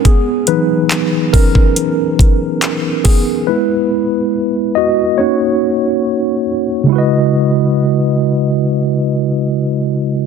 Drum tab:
HH |x-x-x-o-x-x-x-o-|----------------|----------------|
CP |----x-------x---|----------------|----------------|
BD |o-----oo--o---o-|----------------|----------------|